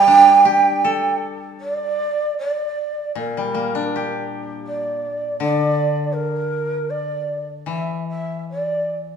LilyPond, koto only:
\new Staff \with { instrumentName = "Koto" } { \time 2/4 \tempo 4 = 78 <g d'>8 g'8 a'4~ | a'4 r4 | bes,16 g16 bes16 d'16 g'4~ | g'4 d4~ |
d2 | e2 | }